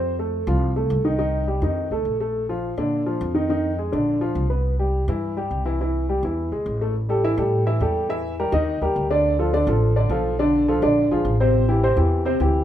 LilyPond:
<<
  \new Staff \with { instrumentName = "Upright piano" } { \time 4/4 \key f \lydian \tempo 4 = 209 <c' c''>8 <a a'>4 <f f'>4 <a a'>4 <ees ees'>8 | <ees ees'>4 <g g'>8 <ees ees'>4 <a a'>4 <a a'>8~ | <a a'>8 <f f'>4 <d d'>4 <f f'>4 <ees ees'>8 | <ees ees'>4 <aes aes'>8 <d d'>4 <f f'>4 <b b'>8~ |
<b b'>8 <g g'>4 <e e'>4 <g g'>4 <e e'>8 | <e e'>4 <g g'>8 <e e'>4 <gis gis'>4 <a a'>8 | \key a \minor r8 <g g' a'>8 <e e' e''>8 <g g' a'>4 <e e' e''>8 <g g' a'>4 | <e e' e''>4 <g g' bes'>8 <dis dis' dis''>4 <g g' ais'>4 <d d' d''>8~ |
<d d' d''>8 <f f' a'>8 <d d' d''>8 <f f' a'>4 <d d' d''>8 <f f' a'>4 | <d d' d''>4 <f f' a'>8 <d d' d''>4 <f f' aes'>4 <c c' c''>8~ | <c c' c''>8 <e e' g'>8 <c c' c''>8 <e e' g'>4 <c c' c''>8 <e e' g'>4 | }
  \new Staff \with { instrumentName = "Upright bass" } { \clef bass \time 4/4 \key f \lydian f,4. c,4. c,4~ | c,4. f,4 b,,8 bes,,4~ | bes,,4. bes,4. f,4~ | f,4. bes,,4. c,4~ |
c,4. g,4. c,4~ | c,4. e,4 b,,8 a,,4~ | \key a \minor a,,4. a,4. e,4~ | e,4. dis,4 dis,8 d,4~ |
d,4. a,,4. b,,4~ | b,,4. bes,,4 bes,,8 a,,4~ | a,,4. e,4. d,4 | }
>>